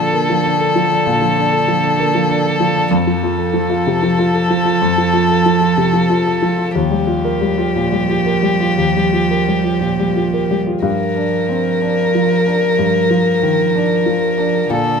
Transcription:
0.00 1.02 A#2 medium
0.00 2.87 D3 medium
0.00 0.30 F3 soft
0.00 0.45 D4 soft
0.00 0.61 A4 soft
0.00 2.87 A4 medium
0.13 0.38 A#3 soft
0.30 0.54 F3 soft
0.45 0.69 D4 soft
0.61 0.85 A4 soft
0.76 1.00 F3 soft
0.91 1.16 D4 soft
1.07 2.88 A#2 medium
1.22 1.46 F3 soft
1.37 1.62 D4 soft
1.53 1.77 A4 soft
1.68 1.92 F3 soft
1.84 2.08 D4 soft
2.00 2.24 A#3 soft
2.15 2.39 F3 soft
2.29 2.54 D4 soft
2.45 2.70 A4 soft
2.60 2.85 F3 soft
2.76 2.91 D4 soft
2.91 4.77 F2 medium
2.91 6.71 F3 medium
2.91 6.71 A4 medium
3.07 3.32 F3 soft
3.23 3.48 F4 soft
3.38 3.63 A4 soft
3.54 3.79 F3 soft
3.70 3.95 F4 soft
3.87 4.11 C3 soft
4.03 4.27 F3 soft
4.19 4.43 F4 soft
4.35 4.59 A4 soft
4.50 4.75 F3 soft
4.65 4.91 F4 soft
4.82 6.71 F2 medium
4.98 5.23 F3 soft
5.14 5.39 F4 soft
5.31 5.56 A4 soft
5.46 5.72 F3 soft
5.61 5.87 F4 soft
5.77 6.04 C3 soft
5.93 6.19 F3 soft
6.10 6.36 F4 soft
6.27 6.52 A4 soft
6.42 6.68 F3 soft
6.58 6.74 F4 soft
6.75 8.75 D#2 soft
6.75 10.60 F3 medium
6.75 10.60 G4 medium
6.91 7.17 G3 soft
7.07 7.34 F4 soft
7.25 7.51 A#4 soft
7.41 7.68 G3 soft
7.58 7.85 F4 soft
7.76 8.02 A#2 soft
7.92 8.19 G3 soft
8.09 8.37 F4 soft
8.26 8.54 A#4 soft
8.43 8.71 G3 soft
8.60 8.88 F4 soft
8.78 10.80 D#2 soft
8.96 9.23 G3 soft
9.13 9.40 F4 soft
9.31 9.58 A#4 soft
9.47 9.75 G3 soft
9.64 9.91 F4 soft
9.81 10.08 A#2 soft
10.00 10.27 G3 soft
10.16 10.44 F4 soft
10.34 10.61 A#4 soft
10.51 10.78 G3 soft
10.67 10.84 F4 soft
10.82 12.75 G2 soft
10.82 14.68 F3 soft
10.82 14.72 A#4 medium
11.16 11.69 D4 soft
11.49 11.82 C4 soft
11.82 12.34 D4 soft
12.15 12.67 F3 soft
12.46 12.99 D4 soft
12.79 14.67 G2 soft
13.10 13.63 F3 soft
13.43 13.75 D#3 soft
13.75 14.26 D4 soft
14.06 14.57 F3 soft
14.38 14.71 D4 soft
14.70 15.00 A#2 soft
14.70 15.00 D3 medium
14.70 15.00 A4 medium

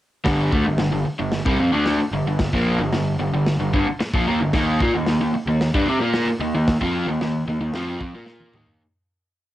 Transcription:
0.24 0.50 G1 loud
0.24 0.51 G2 medium
0.24 0.51 D3 loud
0.24 0.52 G3 loud
0.24 kick loud
0.24 snare loud
0.24 open hi-hat medium
0.52 0.64 D2 medium
0.52 0.64 D3 loud
0.52 0.65 A3 loud
0.52 kick loud
0.66 0.78 G1 medium
0.66 0.78 G2 medium
0.66 0.78 D3 medium
0.78 0.91 G1 medium
0.78 0.91 G2 medium
0.78 0.91 D3 medium
0.78 snare loud
0.78 open hi-hat medium
0.92 1.05 G1 medium
0.92 1.04 G2 medium
0.92 1.06 D3 medium
1.06 muted overdriven electric guitar stroke medium
1.06 muted picked electric bass stroke soft
1.19 1.44 G1 medium
1.19 1.40 G2 medium
1.19 1.41 D3 medium
1.32 snare loud
1.32 open hi-hat medium
1.45 1.57 C2 loud
1.45 1.58 C3 medium
1.45 1.59 G3 loud
1.45 kick loud
1.58 1.71 F2 loud
1.58 1.72 F3 medium
1.58 1.72 C4 medium
1.72 1.97 D2 medium
1.72 1.98 D3 medium
1.72 1.99 A3 medium
1.72 1.99 D4 medium
1.86 snare loud
1.86 open hi-hat medium
1.99 muted picked electric bass stroke soft
1.99 muted overdriven electric guitar stroke medium
2.11 2.23 G1 medium
2.11 2.26 G2 medium
2.11 2.26 D3 medium
2.24 2.50 G1 medium
2.24 2.48 G2 medium
2.24 2.48 D3 medium
2.39 kick loud
2.39 snare loud
2.39 open hi-hat medium
2.53 2.78 A#1 medium
2.53 2.79 A#2 medium
2.53 2.80 F3 loud
2.53 2.80 A#3 loud
2.53 kick medium
2.79 2.92 G1 medium
2.79 2.92 G2 medium
2.79 2.92 D3 medium
2.93 3.18 G1 medium
2.93 3.15 G2 medium
2.93 3.15 D3 medium
2.93 snare loud
2.93 open hi-hat medium
3.18 3.31 G1 medium
3.18 3.32 G2 medium
3.18 3.32 D3 medium
3.32 3.58 G1 medium
3.32 3.55 G2 medium
3.32 3.55 D3 medium
3.47 snare loud
3.47 open hi-hat medium
3.60 3.72 G1 medium
3.60 3.72 G2 medium
3.60 3.73 D3 medium
3.73 3.86 G1 loud
3.73 3.86 G2 medium
3.73 3.86 D3 medium
3.73 kick loud
3.86 muted picked electric bass stroke soft
3.86 muted overdriven electric guitar stroke medium
3.99 muted picked electric bass stroke soft
3.99 muted overdriven electric guitar stroke medium
3.99 snare loud
3.99 open hi-hat medium
4.14 4.26 A#1 loud
4.14 4.27 A#2 medium
4.14 4.27 F3 loud
4.14 kick loud
4.27 4.40 D#2 loud
4.27 4.40 D#3 medium
4.27 4.40 A#3 medium
4.40 4.53 G1 medium
4.40 4.54 G2 medium
4.40 4.53 D3 medium
4.53 4.78 D#2 loud
4.53 4.80 D#3 medium
4.53 4.80 A#3 medium
4.53 4.80 D#4 loud
4.53 kick loud
4.53 snare loud
4.53 open hi-hat medium
4.80 4.93 A#2 loud
4.80 4.93 A#3 medium
4.80 4.94 F4 loud
4.80 kick loud
4.94 5.06 D#2 medium
4.94 5.07 D#3 medium
4.94 5.08 A#3 medium
5.06 5.18 D#2 medium
5.06 5.20 D#3 medium
5.06 5.20 A#3 medium
5.06 snare loud
5.06 open hi-hat medium
5.19 5.32 D#2 medium
5.19 5.34 D#3 medium
5.19 5.34 A#3 medium
5.32 muted picked electric bass stroke soft
5.32 muted overdriven electric guitar stroke medium
5.46 5.72 D#2 medium
5.46 5.69 D#3 medium
5.46 5.69 A#3 medium
5.61 snare loud
5.61 open hi-hat medium
5.74 5.85 G2 medium
5.74 5.87 G3 medium
5.74 5.87 D4 loud
5.74 kick loud
5.86 5.99 C3 loud
5.86 6.00 C4 medium
5.86 6.00 G4 medium
5.99 6.25 A#2 medium
5.99 6.27 A#3 medium
5.99 6.27 F4 loud
5.99 6.27 A#4 loud
6.14 snare loud
6.14 open hi-hat medium
6.27 muted picked electric bass stroke soft
6.27 muted overdriven electric guitar stroke medium
6.39 6.53 D#2 medium
6.39 6.54 D#3 medium
6.39 6.54 A#3 medium
6.54 6.79 D#2 medium
6.54 6.76 D#3 medium
6.54 6.76 A#3 medium
6.68 kick loud
6.68 snare loud
6.68 open hi-hat medium
6.81 7.05 F2 medium
6.81 7.07 F3 loud
6.81 7.07 C4 medium
6.81 7.08 F4 loud
6.81 kick medium
7.06 7.19 D#2 medium
7.06 7.20 D#3 medium
7.06 7.21 A#3 medium
7.20 7.45 D#2 medium
7.20 7.43 D#3 medium
7.20 7.43 A#3 medium
7.20 snare loud
7.20 open hi-hat medium
7.46 7.59 D#2 medium
7.46 7.59 D#3 medium
7.46 7.60 A#3 medium
7.59 7.72 D#2 medium
7.59 7.74 D#3 medium
7.59 7.74 A#3 medium
7.73 7.98 F2 medium
7.73 8.00 F3 medium
7.73 8.01 C4 medium
7.73 8.01 F4 loud
7.73 snare loud
7.73 open hi-hat medium
8.00 8.12 F2 loud
8.00 8.14 F3 medium
8.00 8.14 C4 loud
8.00 kick medium
8.13 8.51 A#2 medium
8.13 8.54 A#3 medium
8.13 8.54 F4 loud
8.13 8.54 A#4 medium
8.26 snare medium
8.40 high tom medium
8.53 8.79 D#2 medium
8.53 8.80 D#3 medium
8.53 8.80 A#3 medium
8.53 8.81 D#4 loud
8.53 mid tom loud
8.66 floor tom medium

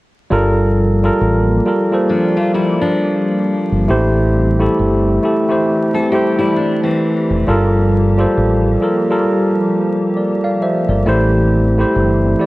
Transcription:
0.30 1.08 G1 loud
0.30 3.85 F3 medium
0.30 0.94 G3 loud
0.30 12.46 G3 medium
0.30 3.85 A#3 medium
0.30 0.94 F4 loud
0.30 3.85 G4 medium
0.30 0.95 A4 loud
0.30 0.95 A#4 loud
1.03 1.60 G3 medium
1.03 1.60 F4 medium
1.03 1.60 A4 medium
1.03 1.61 A#4 loud
1.21 1.59 A1 medium
1.66 1.89 G3 medium
1.66 1.90 F4 medium
1.66 1.90 A4 medium
1.66 1.91 A#4 medium
1.92 3.49 G3 medium
1.92 3.49 F4 medium
1.92 3.50 A4 medium
1.92 3.50 C5 medium
2.09 2.35 F3 medium
2.09 2.35 D4 medium
2.37 2.53 A3 medium
2.37 2.53 F4 medium
2.54 2.80 G3 medium
2.54 2.80 E4 medium
2.81 3.85 F3 medium
2.81 3.84 D4 medium
3.72 3.87 G1 medium
3.88 4.67 A1 loud
3.88 7.44 E3 medium
3.88 4.52 A3 loud
3.88 7.44 C4 medium
3.88 4.52 E4 medium
3.88 12.46 G4 medium
3.88 4.53 G4 medium
3.88 4.53 C5 loud
4.59 5.17 A3 medium
4.59 5.17 E4 medium
4.59 5.18 G4 medium
4.59 5.18 A4 medium
4.79 5.17 G1 medium
5.23 5.47 A3 medium
5.23 5.48 E4 medium
5.23 5.48 G4 medium
5.23 5.48 A4 medium
5.49 6.07 A3 medium
5.49 6.07 E4 medium
5.49 6.07 G4 medium
5.49 6.08 C5 medium
5.94 6.12 C4 medium
5.94 6.11 A4 medium
6.12 7.36 A3 medium
6.12 7.36 E4 medium
6.12 6.38 G4 medium
6.12 7.37 G4 medium
6.12 7.37 C5 medium
6.39 6.56 G3 medium
6.39 6.56 E4 medium
6.56 6.82 D4 medium
6.83 7.43 E3 medium
6.83 7.43 C4 medium
7.30 7.45 F1 medium
7.47 8.25 G1 loud
7.47 11.01 F3 medium
7.47 8.11 G3 loud
7.47 11.01 A#3 medium
7.47 8.11 F4 loud
7.47 8.11 A4 loud
7.47 8.12 A#4 loud
8.18 8.75 G3 medium
8.18 8.76 F4 medium
8.18 8.76 A4 medium
8.18 8.77 C5 medium
8.38 8.76 A1 loud
8.81 9.05 G3 medium
8.81 9.06 F4 medium
8.81 9.06 A4 medium
8.81 9.06 A#4 medium
9.10 10.66 G3 medium
9.10 10.67 F4 medium
9.10 10.17 A4 medium
9.10 10.16 A#4 medium
10.17 10.42 A#4 medium
10.17 10.42 D5 medium
10.44 10.60 D5 medium
10.44 10.60 F5 medium
10.62 10.87 C5 medium
10.62 10.87 E5 medium
10.88 11.03 G1 medium
10.88 11.31 A#4 medium
10.88 11.31 D5 medium
11.05 11.83 A1 loud
11.05 12.46 E3 medium
11.05 11.69 A3 loud
11.05 12.46 C4 medium
11.05 11.70 E4 medium
11.05 11.70 G4 medium
11.05 11.70 C5 loud
11.78 12.35 A3 medium
11.78 12.35 E4 medium
11.78 12.35 G4 medium
11.78 12.36 C5 medium
11.96 12.34 G1 medium
12.39 12.46 A3 medium
12.39 12.46 E4 medium
12.39 12.46 G4 medium
12.39 12.46 D5 medium

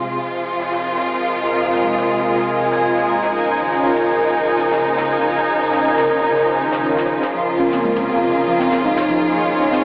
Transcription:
0.00 3.30 C3 medium
0.00 3.30 F3 medium
0.00 7.30 G#3 medium
0.00 3.30 F4 medium
0.00 8.94 F4 medium
0.00 8.43 A#4 medium
0.00 8.09 D#5 medium
0.09 0.18 C3 medium
0.09 0.18 G#3 medium
0.09 0.18 F4 medium
0.34 shaker medium
0.59 snare soft
0.59 shaker medium
0.71 snare soft
0.76 8.94 G#5 medium
0.97 snare soft
1.59 2.06 C3 medium
1.59 2.06 G#3 medium
1.59 2.06 F4 medium
1.59 shaker medium
1.72 snare soft
1.97 snare soft
2.09 3.33 C3 medium
2.09 3.33 G#3 medium
2.09 3.33 F4 medium
2.09 shaker medium
2.35 shaker medium
2.59 shaker medium
2.71 snare soft
2.85 shaker medium
2.97 snare soft
3.09 shaker medium
3.23 snare soft
3.34 9.84 C#3 medium
3.34 7.34 C#3 medium
3.34 9.84 F3 medium
3.34 7.30 D#4 medium
3.34 shaker medium
3.58 4.06 D#3 medium
3.58 4.06 C#4 medium
3.58 4.06 F4 medium
3.58 shaker medium
3.72 snare soft
3.85 shaker medium
3.97 closed hi-hat soft
4.09 shaker medium
4.34 shaker medium
4.59 snare soft
4.59 shaker medium
4.71 snare soft
4.84 shaker medium
4.97 snare medium
5.09 shaker medium
5.34 shaker medium
5.59 shaker medium
5.72 snare soft
5.83 shaker medium
5.97 snare soft
6.09 shaker medium
6.34 shaker medium
6.59 6.68 D#3 medium
6.59 6.68 C#4 medium
6.59 6.68 F4 medium
6.59 shaker medium
6.72 7.33 D#3 medium
6.72 7.33 C#4 medium
6.72 7.33 F4 medium
6.72 snare soft
6.85 shaker medium
6.97 snare soft
7.09 shaker medium
7.22 snare soft
7.34 7.39 F3 medium
7.34 9.84 A#3 medium
7.34 9.32 A#3 medium
7.34 7.99 F4 loud
7.34 9.84 F4 medium
7.34 shaker medium
7.50 9.84 G#4 medium
7.59 8.06 C#3 medium
7.59 8.06 A#3 medium
7.59 7.71 C#4 medium
7.59 8.06 F4 medium
7.59 shaker medium
7.66 9.84 D#4 medium
7.72 7.79 C4 medium
7.72 snare soft
7.84 7.96 G#3 medium
7.84 shaker medium
7.91 9.84 C#5 medium
7.96 8.04 C3 medium
7.96 closed hi-hat soft
8.09 8.18 C#3 medium
8.09 8.18 A#3 medium
8.09 8.21 C4 medium
8.09 8.74 F4 medium
8.09 8.18 F4 medium
8.09 shaker medium
8.22 8.33 C3 medium
8.34 8.39 C#4 medium
8.34 shaker medium
8.47 8.58 F3 loud
8.47 9.84 F5 medium
8.59 8.67 C4 medium
8.59 snare soft
8.59 shaker medium
8.71 8.79 C4 medium
8.71 snare soft
8.84 8.96 G#3 medium
8.84 9.84 D#4 loud
8.84 shaker medium
8.96 9.04 C3 medium
8.96 snare medium
9.09 9.21 F3 medium
9.09 shaker medium
9.22 9.29 F3 medium
9.34 9.39 F3 medium
9.34 9.84 G#3 medium
9.34 shaker medium
9.59 9.84 C#3 medium
9.59 9.84 A#3 medium
9.59 9.71 C#4 medium
9.59 9.84 F4 medium
9.59 shaker medium
9.72 9.79 C4 medium
9.72 snare soft

